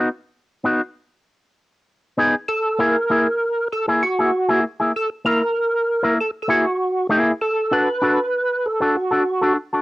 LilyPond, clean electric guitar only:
\new Staff \with { instrumentName = "Clean electric guitar" } { \time 4/4 \key fis \mixolydian \tempo 4 = 98 r4 <b dis' fis'>16 r2 r16 <b dis' gis'>16 r16 | r8 <ais e' gis'>16 r16 <ais e' gis'>16 r4 <ais e' gis'>16 r16 <ais e' gis'>16 r16 <ais e' gis'>16 r16 <ais e' gis'>16 | r8 <ais e' ais'>16 r4 <ais e' ais'>16 r8 <ais e' gis'>16 r8. <ais e' gis'>16 r16 | r8 <d' fis' a'>16 r16 <d' fis' a'>16 r4 <d' fis' a'>16 r16 <d' fis' a'>16 r16 <d' fis' a'>16 r16 <d' fis' a'>16 | }